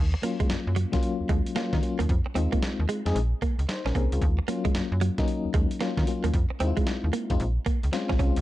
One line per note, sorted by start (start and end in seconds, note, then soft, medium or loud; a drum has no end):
0.00 0.15 D#2 loud
0.14 muted clean electric guitar stroke soft
0.22 0.67 F#3 medium
0.22 0.67 A#3 medium
0.22 0.36 A#3 medium
0.22 0.67 C#4 medium
0.22 0.67 F4 medium
0.22 closed hi-hat medium
0.40 0.44 F#2 soft
0.40 0.47 G#3 medium
0.40 kick medium
0.40 closed hi-hat soft
0.50 0.57 F#2 soft
0.50 snare loud
0.50 closed hi-hat medium
0.67 0.86 F#2 medium
0.76 0.88 F#3 medium
0.76 closed hi-hat medium
0.92 1.29 F#3 loud
0.92 1.30 A#3 medium
0.92 1.30 C#4 medium
0.92 1.30 F4 loud
0.92 kick medium
0.92 snare medium
0.92 closed hi-hat medium
1.03 closed hi-hat medium
1.21 1.24 D#2 soft
1.29 1.41 D#2 loud
1.29 1.42 G#3 medium
1.29 kick medium
1.29 closed hi-hat medium
1.46 closed hi-hat medium
1.55 1.75 F#3 medium
1.55 1.75 A#3 medium
1.55 1.68 A#3 medium
1.55 1.75 C#4 medium
1.55 1.75 F4 loud
1.55 snare loud
1.55 closed hi-hat medium
1.73 1.80 D#3 medium
1.73 muted clean electric guitar stroke soft
1.73 kick medium
1.73 snare medium
1.82 2.09 F#3 medium
1.82 2.09 A#3 medium
1.82 2.09 C#4 medium
1.82 2.09 F4 medium
1.82 closed hi-hat medium
1.99 2.06 D#2 medium
1.99 2.06 A#3 medium
1.99 closed hi-hat medium
2.09 2.21 F2 loud
2.09 kick loud
2.09 closed hi-hat medium
2.26 muted clean electric guitar stroke soft
2.35 2.48 D#2 loud
2.35 2.79 G#3 medium
2.35 2.79 C4 medium
2.35 2.48 C4 medium
2.35 2.79 D#4 medium
2.35 2.80 F4 medium
2.35 closed hi-hat medium
2.52 2.59 A#3 medium
2.52 kick medium
2.52 closed hi-hat soft
2.63 snare loud
2.63 closed hi-hat medium
2.79 2.86 D#2 medium
2.89 3.01 G#3 medium
2.89 closed hi-hat medium
3.05 3.13 F2 medium
3.05 3.15 G#3 medium
3.05 3.15 C4 medium
3.05 3.15 D#4 medium
3.05 3.16 G#4 loud
3.05 snare medium
3.05 closed hi-hat medium
3.15 3.34 A#1 loud
3.15 closed hi-hat medium
3.42 3.54 A#3 medium
3.42 kick medium
3.42 closed hi-hat medium
3.59 3.65 C#2 medium
3.59 closed hi-hat soft
3.68 3.85 D#4 medium
3.68 3.85 C5 medium
3.68 muted clean electric guitar stroke soft
3.68 snare loud
3.68 closed hi-hat medium
3.85 3.92 A#1 medium
3.85 3.92 C#4 medium
3.85 3.95 C#4 medium
3.85 3.95 A#4 medium
3.85 snare medium
3.95 4.07 C2 medium
3.95 4.07 A#3 medium
3.95 4.11 C4 medium
3.95 4.11 G#4 medium
3.95 kick medium
3.95 closed hi-hat medium
4.12 4.19 C#2 medium
4.12 4.38 G#3 medium
4.12 4.38 F4 medium
4.12 closed hi-hat medium
4.22 4.40 D#2 loud
4.22 kick loud
4.22 closed hi-hat medium
4.39 muted clean electric guitar stroke soft
4.48 4.92 F#3 medium
4.48 4.60 A#3 medium
4.48 4.92 A#3 medium
4.48 4.92 C#4 medium
4.48 4.92 F4 medium
4.48 closed hi-hat medium
4.65 4.69 F#2 soft
4.65 4.72 G#3 medium
4.65 kick medium
4.65 closed hi-hat soft
4.75 4.82 F#2 soft
4.75 snare loud
4.75 closed hi-hat medium
4.92 5.10 F#2 medium
5.01 5.13 F#3 medium
5.01 closed hi-hat medium
5.18 5.55 F#3 loud
5.18 5.55 A#3 medium
5.18 5.55 C#4 medium
5.18 5.55 D#4 loud
5.18 kick medium
5.18 snare medium
5.18 closed hi-hat soft
5.28 closed hi-hat medium
5.45 5.49 D#2 soft
5.54 5.66 D#2 loud
5.54 5.66 G#3 medium
5.54 kick loud
5.54 closed hi-hat medium
5.71 closed hi-hat soft
5.81 6.00 F#3 medium
5.81 5.93 A#3 medium
5.81 6.00 A#3 medium
5.81 6.00 C#4 medium
5.81 6.00 F4 medium
5.81 snare loud
5.81 closed hi-hat medium
5.97 6.04 D#3 medium
5.97 muted clean electric guitar stroke soft
5.97 kick medium
5.97 snare medium
6.07 6.34 F#3 medium
6.07 6.34 A#3 medium
6.07 6.34 C#4 medium
6.07 6.34 F4 medium
6.07 closed hi-hat medium
6.24 6.31 D#2 medium
6.24 6.31 A#3 medium
6.24 closed hi-hat medium
6.34 6.46 F2 loud
6.34 kick loud
6.34 closed hi-hat medium
6.50 muted clean electric guitar stroke soft
6.60 6.73 D#2 medium
6.60 7.04 G#3 medium
6.60 7.04 C4 medium
6.60 6.73 C4 medium
6.60 7.04 D#4 medium
6.60 6.69 E4 medium
6.60 closed hi-hat medium
6.67 7.08 F4 medium
6.77 6.84 G#3 medium
6.77 kick medium
6.77 closed hi-hat soft
6.87 snare loud
6.87 closed hi-hat medium
7.04 7.11 D#2 medium
7.13 7.25 A#3 medium
7.13 closed hi-hat medium
7.30 7.37 F2 medium
7.30 7.40 G#3 loud
7.30 7.40 C4 medium
7.30 7.40 D#4 medium
7.30 7.40 F4 loud
7.30 kick medium
7.30 closed hi-hat medium
7.40 7.59 A#1 loud
7.40 closed hi-hat medium
7.66 7.79 A#3 medium
7.66 kick medium
7.66 closed hi-hat medium
7.83 7.90 C#2 medium
7.83 closed hi-hat soft
7.92 8.12 G#3 medium
7.92 8.12 C4 medium
7.92 8.12 C#4 medium
7.92 8.12 F4 loud
7.92 muted clean electric guitar stroke soft
7.92 snare loud
7.92 closed hi-hat medium
8.09 8.17 A#1 medium
8.09 8.17 C#4 medium
8.09 kick medium
8.09 snare medium
8.19 8.31 C2 medium
8.19 8.41 G#3 medium
8.19 8.41 C4 medium
8.19 8.32 C#4 medium
8.19 8.41 C#4 medium
8.19 8.41 F4 medium
8.19 kick medium
8.19 closed hi-hat medium
8.36 8.41 C#2 loud
8.36 closed hi-hat medium